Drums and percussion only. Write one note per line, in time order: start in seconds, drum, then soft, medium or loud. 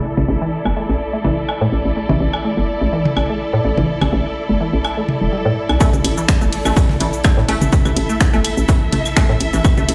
0.17 mid tom medium
0.65 claves medium
0.65 low woodblock soft
1.25 mid tom medium
1.49 claves medium
1.49 low woodblock soft
2.09 mid tom medium
2.33 claves medium
2.33 low woodblock soft
3.05 mid tom medium
3.17 claves medium
3.17 low woodblock soft
3.77 mid tom medium
4.01 mid tom medium
4.01 claves medium
4.01 low woodblock soft
4.85 claves medium
4.85 low woodblock soft
5.09 mid tom medium
5.69 claves medium
5.69 low woodblock soft
5.81 kick loud
5.81 tambourine medium
5.81 low woodblock soft
5.81 shaker medium
5.93 mid tom medium
5.93 shaker soft
6.04 closed hi-hat medium
6.04 tambourine medium
6.04 claves medium
6.17 shaker soft
6.28 finger snap loud
6.28 kick loud
6.28 snare loud
6.28 tambourine medium
6.28 shaker medium
6.41 shaker soft
6.53 closed hi-hat medium
6.53 open hi-hat medium
6.65 claves medium
6.65 low woodblock soft
6.65 shaker soft
6.76 kick loud
6.76 tambourine medium
6.76 shaker medium
6.89 snare soft
6.89 mid tom loud
7.00 closed hi-hat medium
7.00 tambourine medium
7.13 closed hi-hat soft
7.13 shaker soft
7.24 finger snap loud
7.24 kick loud
7.24 snare loud
7.24 tambourine medium
7.24 claves medium
7.24 shaker medium
7.38 snare soft
7.48 closed hi-hat medium
7.48 tambourine medium
7.48 low woodblock soft
7.61 mid tom medium
7.61 shaker soft
7.72 kick loud
7.72 tambourine medium
7.72 shaker medium
7.85 mid tom loud
7.85 claves medium
7.85 shaker soft
7.96 closed hi-hat loud
7.96 tambourine medium
8.09 shaker soft
8.21 finger snap medium
8.21 kick loud
8.21 snare loud
8.21 tambourine loud
8.21 shaker medium
8.33 snare soft
8.33 low woodblock soft
8.33 shaker soft
8.44 closed hi-hat medium
8.44 tambourine medium
8.44 claves medium
8.57 shaker soft
8.69 kick loud
8.69 tambourine medium
8.69 shaker medium
8.92 closed hi-hat medium
8.92 mid tom medium
8.92 tambourine medium
9.05 snare medium
9.05 claves medium
9.05 shaker soft
9.17 finger snap loud
9.17 kick loud
9.17 snare loud
9.17 tambourine loud
9.17 low woodblock soft
9.17 shaker medium
9.29 snare medium
9.40 closed hi-hat loud
9.40 tambourine medium
9.53 closed hi-hat soft
9.53 shaker soft
9.64 kick loud
9.64 tambourine medium
9.64 claves medium
9.64 shaker medium
9.77 mid tom medium
9.77 shaker soft
9.89 closed hi-hat loud
9.89 tambourine medium